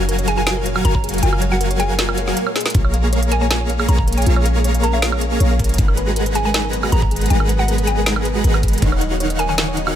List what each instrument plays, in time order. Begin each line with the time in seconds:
Already playing: 808-style bass F#1, ambient pad A#2 G#3 F5, supersaw synth F#3 F#4 A#4 F5 G#5
0.09 synth arpeggio sound A#4, closed hi-hat
0.19 synth arpeggio sound C#5, closed hi-hat
0.28 synth arpeggio sound G#4, synth pluck G#5, closed hi-hat
0.38 synth arpeggio sound A#4, synth pluck G#5
0.47 synth arpeggio sound F4, synth pluck G#5, snare, closed hi-hat
0.57 synth arpeggio sound A#4
0.66 synth arpeggio sound C#5, closed hi-hat
0.76 synth arpeggio sound F#4, high woodblock
0.85 808-style bass F#1, supersaw synth F#3 F#4 A#4 F5 G#5, synth arpeggio sound A#4, synth pluck A#5, closed hi-hat
0.95 synth arpeggio sound C#5, synth pluck A#5, kick
1.04 synth arpeggio sound G#4, closed hi-hat
1.09 closed hi-hat
1.14 synth arpeggio sound A#4, closed hi-hat
1.18 closed hi-hat
1.23 808-style bass F#1, supersaw synth F#3 F#4 A#4 F5 G#5, synth arpeggio sound F4, synth pluck G#5, closed hi-hat
1.33 synth arpeggio sound A#4, high woodblock
1.42 synth arpeggio sound C#5, closed hi-hat
1.52 synth arpeggio sound F#4, synth pluck F#5
1.61 synth arpeggio sound A#4, closed hi-hat
1.71 synth arpeggio sound C#5, closed hi-hat
1.80 synth arpeggio sound G#4, synth pluck G#5, closed hi-hat
1.90 synth arpeggio sound A#4
1.99 synth arpeggio sound F4, snare, closed hi-hat, swell
2.09 synth arpeggio sound A#4, high woodblock
2.18 synth arpeggio sound C#5, closed hi-hat
2.28 synth arpeggio sound F#4, snare
2.37 synth arpeggio sound A#4, closed hi-hat
2.47 synth arpeggio sound C#5, high woodblock
2.56 synth arpeggio sound G#4, snare, closed hi-hat
2.61 closed hi-hat
2.66 synth arpeggio sound A#4, snare, closed hi-hat
2.70 closed hi-hat
2.74 808-style bass A#1, ambient pad A#2 C#4, supersaw synth A#3 G#4 C#5 F5 A#5, synth arpeggio sound F4, kick, closed hi-hat
2.85 synth arpeggio sound C#5, high woodblock
2.94 synth arpeggio sound F5, closed hi-hat
3.04 synth arpeggio sound G#4
3.13 synth arpeggio sound C#5, closed hi-hat
3.23 synth arpeggio sound F5, closed hi-hat
3.32 synth arpeggio sound A#4, synth pluck G#5, closed hi-hat
3.41 synth arpeggio sound C#5, synth pluck G#5
3.50 synth arpeggio sound F4, synth pluck G#5, snare, closed hi-hat
3.61 synth arpeggio sound C#5
3.70 synth arpeggio sound F5, closed hi-hat
3.80 synth arpeggio sound G#4, high woodblock
3.88 808-style bass A#1, supersaw synth A#3 G#4 C#5 F5 A#5, synth arpeggio sound C#5, synth pluck A#5, closed hi-hat
3.98 synth arpeggio sound F5, synth pluck A#5, kick
4.08 synth arpeggio sound A#4, closed hi-hat
4.13 closed hi-hat
4.17 synth arpeggio sound C#5, synth pluck G#5, closed hi-hat
4.22 closed hi-hat
4.26 808-style bass A#1, supersaw synth A#3 G#4 C#5 F5 A#5, synth arpeggio sound F4, closed hi-hat
4.36 synth arpeggio sound C#5, high woodblock
4.46 synth arpeggio sound F5, closed hi-hat
4.56 synth arpeggio sound G#4
4.64 synth arpeggio sound C#5, closed hi-hat
4.74 synth arpeggio sound F5, closed hi-hat
4.83 synth arpeggio sound A#4, synth pluck A#5, closed hi-hat
4.93 synth arpeggio sound C#5, synth pluck F5
5.02 synth arpeggio sound F4, snare, closed hi-hat
5.12 synth arpeggio sound C#5, high woodblock
5.21 synth arpeggio sound F5, closed hi-hat
5.32 synth arpeggio sound G#4
5.40 808-style bass A#1, supersaw synth A#3 G#4 C#5 F5 A#5, synth arpeggio sound C#5, closed hi-hat
5.51 synth arpeggio sound F5
5.59 synth arpeggio sound A#4, kick, closed hi-hat
5.64 closed hi-hat
5.69 synth arpeggio sound C#5, closed hi-hat
5.74 closed hi-hat
5.78 808-style bass G#1, ambient pad B2 F#3 B3, supersaw synth G#3 G#4 B4 F#5 A#5, synth arpeggio sound D#4, kick, closed hi-hat
5.88 synth arpeggio sound A#4, high woodblock
5.97 synth arpeggio sound B4, closed hi-hat
6.07 synth arpeggio sound F#4
6.16 synth arpeggio sound A#4, closed hi-hat
6.26 synth arpeggio sound B4, closed hi-hat
6.35 synth arpeggio sound G#4, synth pluck G#5, closed hi-hat
6.45 synth arpeggio sound A#4, synth pluck G#5
6.54 synth arpeggio sound D#4, snare, closed hi-hat
6.64 synth arpeggio sound A#4
6.73 synth arpeggio sound B4, closed hi-hat
6.83 synth arpeggio sound F#4, high woodblock
6.92 808-style bass G#1, supersaw synth G#3 G#4 B4 F#5 A#5, synth arpeggio sound A#4, synth pluck A#5, closed hi-hat
7.02 synth arpeggio sound B4, synth pluck A#5, kick
7.11 synth arpeggio sound G#4, closed hi-hat
7.16 closed hi-hat
7.21 synth arpeggio sound A#4, closed hi-hat
7.26 closed hi-hat
7.30 808-style bass G#1, supersaw synth G#3 G#4 B4 F#5 A#5, synth arpeggio sound D#4, synth pluck G#5, closed hi-hat
7.40 synth arpeggio sound A#4, high woodblock
7.49 synth arpeggio sound B4, closed hi-hat
7.59 synth arpeggio sound F#4, synth pluck F#5
7.68 synth arpeggio sound A#4, closed hi-hat
7.78 synth arpeggio sound B4, closed hi-hat
7.87 synth arpeggio sound G#4, synth pluck G#5, closed hi-hat
7.97 synth arpeggio sound A#4
8.06 synth arpeggio sound D#4, snare, closed hi-hat
8.16 synth arpeggio sound A#4, high woodblock
8.25 synth arpeggio sound B4, closed hi-hat
8.35 synth arpeggio sound F#4
8.44 808-style bass G#1, supersaw synth G#3 G#4 B4 F#5 A#5, synth arpeggio sound A#4, closed hi-hat
8.54 synth arpeggio sound B4, high woodblock
8.63 synth arpeggio sound G#4, kick, closed hi-hat
8.68 closed hi-hat
8.73 synth arpeggio sound A#4, closed hi-hat
8.78 closed hi-hat
8.82 808-style bass D#1, ambient pad C#3 D#4, supersaw synth D#3 D#4 C#5 F5 F#5, synth arpeggio sound D#4, kick, closed hi-hat
8.92 synth arpeggio sound C#5, high woodblock
9.01 synth arpeggio sound D#5, closed hi-hat
9.11 synth arpeggio sound F#4
9.20 synth arpeggio sound C#5, closed hi-hat
9.30 synth arpeggio sound D#5, closed hi-hat
9.39 synth arpeggio sound A#4, synth pluck G#5, closed hi-hat
9.49 synth arpeggio sound C#5, synth pluck G#5
9.58 synth arpeggio sound D#4, synth pluck G#5, snare, closed hi-hat
9.68 synth arpeggio sound C#5
9.77 synth arpeggio sound D#5, closed hi-hat
9.87 synth arpeggio sound F#4, high woodblock